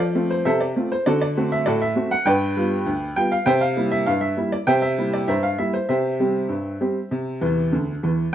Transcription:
Already playing: F3
0.00 D5
0.15 A3 C4 F4
0.30 C5
0.45 C3 A4 C5 E5
0.61 D5
0.76 A3 C4 F4
0.92 C5
1.06 D3 F#4 A4 D5
1.21 D5
1.37 A3 C4 F#4
1.52 E5
1.66 A2 F#4 A4 D5
1.82 E5
1.96 A3 C4 F#4
2.11 F#5
2.26 G2 B4 D5 G5
2.56 G3 B3 F4
2.86 D2
3.16 G3 B3 F4 G5
3.32 F5
3.46 C3 C5 E5 G5
3.61 F5
3.77 G3 A#3 E4
3.91 E5
4.06 G2 F5
4.21 E5
4.37 G3 A#3 E4
4.52 D5
4.67 C3 C5 E5 G5
4.82 E5
4.98 G3 A#3 E4
5.13 D5
5.28 G2 A#4 C5 E5
5.43 F5
5.58 G3 A#3 E4 E5
5.74 C5
5.89 C3 G4 C5 E5
6.19 G3 C4 G4
6.49 G2
6.81 G3 C4 G4
7.11 C3
7.41 E2 E3
7.72 D2 D3
8.03 E2 E3

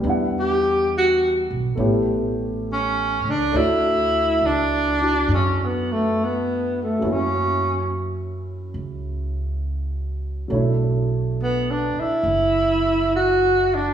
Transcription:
0.00 E2 G3 B3
0.05 D4 E4
0.09 F#5
0.40 G4
0.98 F#4
1.50 B1
1.75 A1 A3 B3 E4 C#5
1.80 G4
2.72 C#4
3.25 C#2
3.30 D4
3.52 D2 A3 D4 C#5
3.56 E4 F#4
4.41 C#2
4.46 D4
5.00 D4 E4 F#4
5.28 F#2
5.33 C#4
5.65 B3
5.92 A3
6.24 B3
6.82 A3
6.99 F#2 F#3 A#3 C#4
7.04 E4 F#4
7.11 C#4
8.74 C#2
10.48 B1 F#3 A3 C#5
10.53 D4 E4
11.43 B3
11.71 D4
11.96 muted upright bass stroke
12.00 E4
12.23 F#1
13.16 F#4
13.75 D4

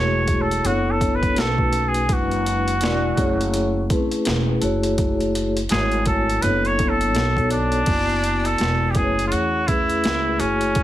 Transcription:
Already playing: E1 A3 E4 F#4 G#4 C#5
0.28 kick, closed hi-hat
0.42 A4
0.51 closed hi-hat
0.63 F#1 B3 D4 E4 F#4 A4 C#5, closed hi-hat
0.91 A4
0.98 B3 D4 E4 A4 C#5, kick, closed hi-hat
1.15 B4
1.23 kick, closed hi-hat
1.35 B1 A3 C#4 D#4 F#4 A4, snare, closed hi-hat
1.39 A4
1.43 B4
1.58 kick
1.73 closed hi-hat
1.89 G#4
1.94 closed hi-hat
2.07 F#1 G#3 D4 E4 F#4 B4, kick, closed hi-hat
2.13 F#4
2.31 closed hi-hat
2.46 closed hi-hat
2.68 closed hi-hat
2.81 E1 G#3 D4 E4 F#4 D5, snare, closed hi-hat
3.16 F#1 A3 C#4 E4 G#4 C#5, kick, closed hi-hat
3.41 closed hi-hat
3.54 closed hi-hat
3.90 A3 C4 E4 G#4 B4, kick, closed hi-hat
3.97 C#4
4.11 closed hi-hat
4.25 E1, snare, closed hi-hat
4.61 F#1 A3 E4 F#4 G#4 C#5, closed hi-hat
4.83 closed hi-hat
4.98 kick, closed hi-hat
5.21 closed hi-hat
5.35 closed hi-hat
5.57 closed hi-hat
5.69 G#1 A3 E4 F#4 G#4 C#5 G#5, snare, closed hi-hat
5.92 closed hi-hat
6.06 A4, kick, closed hi-hat
6.29 closed hi-hat
6.42 F#1 B3 D4 E4 A4 B4 C#5, closed hi-hat
6.65 C#5, closed hi-hat
6.78 B3 D4 E4 A4, kick, closed hi-hat
6.89 A4
7.01 closed hi-hat
7.14 B1 B3 D#4 F#4 A4, snare, closed hi-hat
7.37 kick, closed hi-hat
7.50 D4, closed hi-hat
7.72 closed hi-hat
7.86 F#1 B3 E4 F#4 D5 G#5, kick, closed hi-hat, crash
8.09 closed hi-hat
8.24 closed hi-hat
8.45 A4, closed hi-hat
8.58 E1, snare, closed hi-hat
8.91 A3 G4, closed hi-hat
8.95 F#1 C#4 E4 G#4 B4, kick
9.03 C#5
9.19 closed hi-hat
9.27 F4
9.32 E2 F#4, closed hi-hat
9.67 A3 C#4 E4 G#4 B4, kick, closed hi-hat
9.89 closed hi-hat
10.04 C#2, snare, closed hi-hat
10.38 F#1 A3 C#4 E4 F#4 G#4 C#5, closed hi-hat
10.61 closed hi-hat
10.75 kick, closed hi-hat

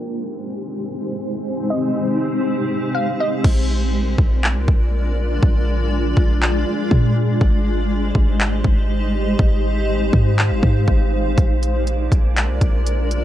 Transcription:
Already playing: G#3 C4 D#4 G4 C5
1.46 G4
1.70 D#5
2.95 F5
3.20 D#5
3.44 A#1 G#3 D4 F4 A#4 D5, kick, crash
4.18 A#1, kick
4.44 clap
4.56 C2
4.68 A#1, kick
5.43 A#1 G#4, kick
6.17 A#1, kick
6.42 clap
6.91 A#2, kick
7.41 G#1 D#4 G4 C5 D#5, kick
8.15 G#1, kick
8.41 clap
8.65 G#1, kick
9.39 G#1 F5, kick
10.13 G#2, kick
10.39 clap
10.51 G1
10.63 G#2, kick
10.88 G#1, kick
11.38 A#1 G#3 A#3 D4 F4 G#4 A#4 D5, kick, closed hi-hat
11.63 closed hi-hat
11.87 closed hi-hat
12.12 A#1, kick, closed hi-hat
12.37 clap, closed hi-hat
12.49 C2
12.61 A#1, kick, closed hi-hat
12.87 closed hi-hat
13.11 closed hi-hat

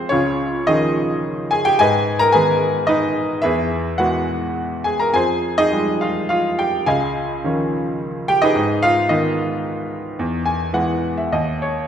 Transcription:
Already playing: F2 F3 G#3 C4 F4 G4 G#4 C5 F5 G5
0.09 C#2 C#4 F4 G#4 C#5
0.67 D#3 F3 C#4 D#4 G#4 D#5
1.51 G#4 G#5
1.65 G4 G5
1.79 G#2 G#4 B4 D#5 G#5
2.19 A#4 A#5
2.32 D#3 G#3 B3 G#4 B4 G#5
2.87 D#4 B4 D#5
3.42 E2 E4 G#4 B4 E5
3.98 E3 G#3 B3 F#4 B4 F#5
4.84 G#4 G#5
4.99 A#4 A#5
5.13 F2 G#4 C5 G#5
5.58 D#4 G#4 D#5
5.72 F3 G3 G#3
6.01 F4 F5
6.29 F4 F5
6.59 G4 G5
6.86 C#2 G#4 D#5 F5 G#5
7.44 D#3 F3 C#4
8.28 G4 G5
8.42 D#4 G#4 B4 D#5
8.55 G#2
8.82 F4 F5
9.09 D#3 G#3 B3 D#4 B4 D#5
10.19 E2
10.46 G#5
10.73 E3 G#3 B3 F#5
11.17 E5
11.32 D#2 D#5
11.62 C#5

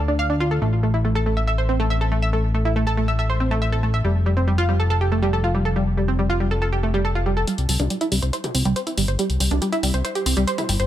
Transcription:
Already playing: D2
0.08 D4
0.19 F5
0.30 D4
0.40 F4
0.51 A4
0.62 A1 A3
0.83 A3
0.94 E4
1.05 A3
1.15 A4
1.26 A3
1.37 E5
1.48 E5
1.58 C5
1.69 C4
1.80 A3
1.90 E5
2.01 A4
2.12 A3
2.22 E5
2.33 A3
2.55 A3
2.65 E4
2.76 A3
2.87 A4
2.98 A3
3.08 E5
3.19 E5
3.30 C5
3.40 C4
3.51 A3
3.62 E5
3.73 A4
3.83 A3
3.94 E5
4.05 F1 G3
4.26 G3
4.37 C4
4.47 G3
4.58 F4
4.69 G3
4.80 A4
4.90 A4
5.01 G4
5.12 A3
5.22 G3
5.33 A4
5.44 F4
5.55 G3
5.65 A4
5.76 G3
5.97 G3
6.08 C4
6.19 G3
6.30 F4
6.40 G3
6.51 A4
6.62 A4
6.72 G4
6.83 A3
6.94 G3
7.05 A4
7.15 F4
7.26 G3
7.37 A4
7.47 G3, closed hi-hat
7.58 C2, closed hi-hat
7.69 C2 G3, open hi-hat
7.80 C2 D4, closed hi-hat, mid tom
7.90 G3, closed hi-hat
8.01 E4, closed hi-hat
8.12 C2 G3, open hi-hat
8.22 C2 C5, closed hi-hat
8.33 C5, closed hi-hat
8.44 G4, closed hi-hat, mid tom
8.55 C2 C4, open hi-hat
8.65 C2 G3, closed hi-hat
8.76 C5, closed hi-hat
8.87 E4, closed hi-hat
8.97 G1 G3, open hi-hat
9.08 G1 C5, closed hi-hat
9.19 G3, closed hi-hat
9.30 C2, closed hi-hat
9.40 C2 G3, open hi-hat
9.51 C2 D4, closed hi-hat, mid tom
9.62 G3, closed hi-hat
9.73 E4, closed hi-hat
9.83 C2 G3, open hi-hat
9.94 C2 C5, closed hi-hat
10.05 C5, closed hi-hat
10.15 G4, closed hi-hat
10.26 C2 C4, open hi-hat
10.37 C2 G3, closed hi-hat
10.47 C5, closed hi-hat
10.58 E4, closed hi-hat, mid tom
10.69 G1 G3, open hi-hat
10.80 G1 C5, closed hi-hat

